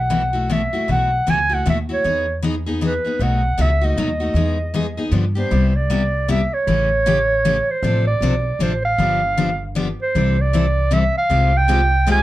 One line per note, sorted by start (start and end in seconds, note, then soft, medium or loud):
0.00 0.65 B1 medium
0.00 0.54 F#5 medium
0.10 0.21 B2 medium
0.10 0.21 E3 medium
0.10 0.22 A3 medium
0.10 0.22 E4 medium
0.10 0.22 F#4 medium
0.33 0.49 A3 soft
0.33 0.49 E4 medium
0.33 0.48 F#4 medium
0.50 0.60 B2 medium
0.50 0.61 E3 medium
0.50 0.61 A3 medium
0.50 0.61 E4 medium
0.50 0.61 F#4 medium
0.50 0.90 E5 medium
0.73 0.88 A3 soft
0.73 0.88 E4 soft
0.73 0.87 F#4 medium
0.88 1.19 B1 medium
0.88 1.09 B2 medium
0.88 1.09 E3 medium
0.88 1.09 A3 medium
0.88 1.09 E4 medium
0.88 1.10 F#4 medium
0.88 1.31 F#5 medium
1.27 1.60 C#2 medium
1.27 1.38 B2 medium
1.27 1.38 E3 medium
1.27 1.38 A3 medium
1.27 1.38 E4 medium
1.27 1.39 F#4 medium
1.27 1.56 G#5 loud
1.50 1.65 A3 soft
1.50 1.65 E4 soft
1.50 1.64 F#4 medium
1.54 1.67 F#5 medium
1.66 1.99 D#2 medium
1.66 1.77 B2 medium
1.66 1.77 E3 medium
1.66 1.77 A3 medium
1.66 1.77 E4 medium
1.66 1.77 F#4 medium
1.70 1.79 E5 medium
1.89 2.04 A3 soft
1.89 2.04 E4 medium
1.89 2.03 F#4 medium
1.93 2.36 C#5 medium
2.04 2.97 E2 medium
2.04 2.25 E3 medium
2.04 2.25 B3 medium
2.04 2.26 D#4 medium
2.04 2.26 G#4 medium
2.43 2.54 E3 medium
2.43 2.54 B3 medium
2.43 2.54 D#4 medium
2.43 2.55 G#4 medium
2.66 2.80 B3 soft
2.66 2.81 D#4 medium
2.66 2.81 G#4 medium
2.81 2.92 E3 medium
2.81 2.93 B3 medium
2.81 2.93 D#4 medium
2.81 2.93 G#4 medium
2.87 3.24 B4 medium
3.05 3.20 B3 medium
3.05 3.20 D#4 soft
3.05 3.19 G#4 soft
3.19 3.51 B1 medium
3.19 3.41 B2 medium
3.19 3.41 F#3 medium
3.19 3.41 A3 medium
3.19 3.41 D#4 medium
3.19 3.42 F#4 medium
3.19 3.63 F#5 medium
3.58 3.91 C#2 medium
3.58 3.69 B2 medium
3.58 3.69 F#3 medium
3.58 3.70 A3 medium
3.58 3.70 D#4 medium
3.58 3.70 F#4 loud
3.58 3.86 E5 loud
3.81 3.97 A3 soft
3.81 3.97 D#4 medium
3.81 3.96 F#4 medium
3.81 5.15 D#5 medium
3.97 4.30 D#2 medium
3.97 4.08 B2 medium
3.97 4.09 F#3 medium
3.97 4.09 A3 medium
3.97 4.09 D#4 medium
3.97 4.09 F#4 medium
4.20 4.36 A3 soft
4.20 4.35 D#4 medium
4.20 4.35 F#4 medium
4.34 4.97 E2 medium
4.34 4.56 E3 medium
4.34 4.57 G#3 medium
4.34 4.57 B3 medium
4.34 4.57 D#4 medium
4.34 4.57 G#4 medium
4.74 4.85 E3 medium
4.74 4.86 G#3 medium
4.74 4.85 B3 medium
4.74 4.86 D#4 medium
4.74 4.86 G#4 medium
4.97 5.11 B3 soft
4.97 5.12 D#4 soft
4.97 5.12 G#4 medium
5.12 5.43 G2 medium
5.12 5.23 D3 medium
5.12 5.24 F3 medium
5.12 5.24 B3 medium
5.12 5.24 D4 medium
5.12 5.24 G4 medium
5.35 5.50 B3 soft
5.35 5.51 D4 medium
5.35 5.51 G4 medium
5.35 5.68 C5 medium
5.51 6.44 C2 medium
5.51 5.72 C3 medium
5.51 5.72 G3 medium
5.51 5.72 B3 medium
5.51 5.73 E4 medium
5.51 5.73 G4 medium
5.68 5.77 C5 medium
5.76 6.29 D5 medium
5.90 6.01 C3 medium
5.90 6.02 G3 medium
5.90 6.01 B3 medium
5.90 6.02 E4 medium
5.90 6.02 G4 medium
6.28 6.40 C3 medium
6.28 6.40 G3 medium
6.28 6.40 B3 medium
6.28 6.40 E4 loud
6.28 6.40 G4 medium
6.28 6.55 E5 medium
6.54 7.72 C#5 medium
6.67 7.60 A1 medium
6.67 6.88 C#3 medium
6.67 6.88 E3 medium
6.67 6.89 A3 medium
6.67 6.89 C#4 medium
6.67 6.89 G4 medium
7.06 7.17 C#3 medium
7.06 7.17 E3 medium
7.06 7.18 A3 medium
7.06 7.18 C#4 medium
7.06 7.18 G4 loud
7.45 7.56 C#3 medium
7.45 7.56 E3 loud
7.45 7.56 A3 medium
7.45 7.56 C#4 loud
7.45 7.56 G4 medium
7.71 8.07 C5 medium
7.83 8.14 A1 medium
7.83 8.04 C3 medium
7.83 8.04 F3 medium
7.83 8.04 C4 medium
7.83 8.05 D4 medium
7.83 8.05 A4 medium
8.07 8.64 D5 medium
8.21 8.54 B1 medium
8.21 8.33 C3 medium
8.21 8.33 F3 medium
8.21 8.34 C4 loud
8.21 8.34 D4 medium
8.21 8.34 A4 medium
8.59 8.93 A1 medium
8.59 8.71 C3 medium
8.59 8.72 F3 medium
8.59 8.72 C4 medium
8.59 8.72 D4 medium
8.59 8.72 A4 medium
8.59 8.84 C5 medium
8.85 9.67 F5 loud
8.98 9.91 G1 loud
8.98 9.20 D3 medium
8.98 9.20 F3 medium
8.98 9.20 B3 medium
8.98 9.20 D4 medium
8.98 9.20 G4 medium
9.37 9.49 D3 medium
9.37 9.49 F3 medium
9.37 9.49 B3 medium
9.37 9.49 D4 medium
9.37 9.49 G4 medium
9.75 9.87 D3 medium
9.75 9.87 F3 medium
9.75 9.87 B3 medium
9.75 9.87 D4 medium
9.75 9.87 G4 medium
10.02 10.43 C5 medium
10.15 11.07 C2 medium
10.15 10.36 C3 medium
10.15 10.36 E3 medium
10.15 10.36 G3 medium
10.15 10.36 C4 medium
10.15 10.36 E4 medium
10.15 10.36 A4 medium
10.41 10.95 D5 medium
10.53 10.64 C3 medium
10.53 10.65 E3 medium
10.53 10.65 G3 medium
10.53 10.65 C4 medium
10.53 10.65 E4 medium
10.53 10.65 A4 medium
10.91 11.02 C3 medium
10.91 11.03 E3 medium
10.91 11.03 G3 medium
10.91 11.03 C4 medium
10.91 11.03 E4 medium
10.91 11.03 A4 loud
10.91 11.16 E5 medium
11.18 11.58 F5 loud
11.30 12.23 C2 medium
11.30 11.51 C3 medium
11.30 11.51 G#3 medium
11.30 11.51 C4 medium
11.30 11.51 F4 medium
11.30 11.52 G4 medium
11.57 12.09 G5 loud
11.68 11.79 C3 medium
11.68 11.80 G#3 medium
11.68 11.80 C4 medium
11.68 11.80 F4 medium
11.68 11.80 G4 loud
12.07 12.18 C3 medium
12.07 12.18 G#3 medium
12.07 12.18 C4 medium
12.07 12.19 F4 loud
12.07 12.19 G4 loud
12.12 12.23 G#5 loud